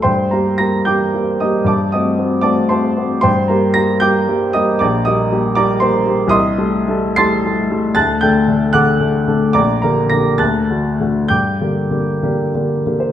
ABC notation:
X:1
M:6/8
L:1/16
Q:3/8=75
K:Gm
V:1 name="Grand piano"
[cgc']2 [Bb]2 [bb']2 [gd'g']4 [ee']2 | [dad']2 [ee']4 [dad']2 [cac']4 | [cgc']2 [Bb]2 [bb']2 [gd'g']4 [ee']2 | [dbd']2 [ee']4 [dbd']2 [cc']4 |
[ec'e']6 [c'a'c'']6 | [a^f'a']2 [gg']4 [^fd'f']6 | [dbd']2 [Bb]2 [bb']2 [a^f'a']6 | [gd'g']8- [gd'g']2 z c |]
V:2 name="Grand piano"
G,,2 [G,B,G]2 [G,B,G]2 [G,B,G]2 [G,B,G]2 [G,B,G]2 | G,,2 [A,C^F]2 [A,CF]2 [A,CF]2 [A,CF]2 [A,CF]2 | G,,2 [G,B,G]2 [G,B,G]2 [G,B,G]2 [G,B,G]2 [G,B,G]2 | B,,,2 [G,B,G]2 [G,B,G]2 [G,B,G]2 [G,B,G]2 [G,B,G]2 |
C,,2 [G,A,A]2 [G,A,A]2 [G,A,A]2 [G,A,A]2 [G,A,A]2 | D,,2 [D,A,A]2 [D,A,A]2 [D,A,A]2 [D,A,A]2 [D,A,A]2 | B,,,2 [D,B,G]2 [D,B,G]2 D,,2 [D,A,^F]2 [D,A,F]2 | G,,2 [D,B,G]2 [D,B,G]2 [D,B,G]2 [D,B,G]2 [D,B,G]2 |]